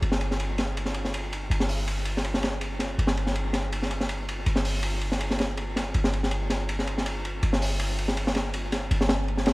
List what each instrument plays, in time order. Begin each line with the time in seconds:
0.02 808-style bass G1, ride
0.12 snare
0.21 ride
0.31 snare
0.40 ride
0.58 snare, ride
0.77 ride
0.85 snare
0.94 ride
1.05 snare
1.14 ride
1.33 ride
1.50 808-style bass G1, ride
1.60 snare
1.69 open hi-hat
1.88 ride
2.05 ride
2.17 snare
2.24 ride
2.34 snare
2.43 snare, ride
2.61 ride
2.79 snare, ride
2.98 808-style bass G1, ride
3.07 snare
3.17 ride
3.27 snare
3.35 ride
3.53 snare, ride
3.72 ride
3.82 snare
3.91 ride
4.00 snare
4.09 ride
4.29 ride
4.46 808-style bass G1, ride
4.56 snare
4.65 open hi-hat
4.83 ride
5.01 ride
5.12 snare
5.20 ride
5.31 snare
5.39 snare, ride
5.57 ride
5.76 snare, ride
5.94 808-style bass G1, ride
6.04 snare
6.13 ride
6.23 snare
6.31 ride
6.50 snare, ride
6.69 ride
6.79 snare
6.87 ride
6.98 snare
7.06 ride
7.25 ride
7.43 808-style bass G1, ride
7.53 snare
7.62 open hi-hat
7.79 ride
7.98 ride
8.08 snare
8.17 ride
8.27 snare
8.35 snare, ride
8.54 ride
8.72 snare, ride
8.91 808-style bass G1, ride
9.01 snare
9.09 snare, ride
9.28 ride
9.37 snare
9.46 snare, ride